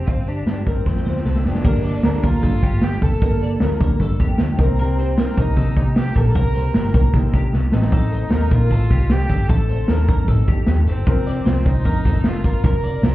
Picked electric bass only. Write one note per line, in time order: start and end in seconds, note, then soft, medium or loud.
0.08 0.41 G1 medium
0.46 0.63 G2 medium
0.67 0.83 G2 medium
0.87 1.03 F2 loud
1.06 1.22 D2 medium
1.25 1.42 C2 medium
1.44 1.61 F1 medium
1.64 1.98 G1 medium
2.03 2.20 D2 medium
2.23 2.40 D2 medium
2.43 2.60 G2 loud
2.63 2.96 G1 medium
3.02 3.18 F1 medium
3.22 3.55 G1 medium
3.60 3.77 D2 medium
3.80 3.97 D2 loud
4.00 4.17 G2 loud
4.19 4.36 F2 medium
4.39 4.56 D2 loud
4.59 5.25 C2 loud
5.37 5.54 C2 medium
5.57 5.74 C3 loud
5.76 6.10 C3 loud
6.16 6.33 A#1 loud
6.35 6.69 C2 medium
6.74 6.91 G1 medium
6.95 7.11 C2 medium
7.14 7.31 C3 medium
7.33 7.50 C3 medium
7.54 7.70 C2 medium
7.73 8.23 A1 loud
8.31 8.48 D#2 medium
8.51 8.68 A#2 medium
8.71 8.88 A2 loud
8.91 9.24 C2 loud
9.30 9.46 G1 medium
9.49 9.83 A1 medium
9.88 10.05 D#2 medium
10.09 10.28 F2 loud
10.28 10.48 A2 loud
10.48 10.65 F2 loud
10.67 10.84 D#2 medium
10.85 11.03 G1 medium
11.07 11.40 F1 medium
11.45 11.62 C2 medium
11.66 11.82 C2 medium
11.85 12.02 F2 loud
12.05 12.44 F1 loud
12.44 12.61 G1 loud
12.64 12.97 F1 medium
13.02 13.15 C2 medium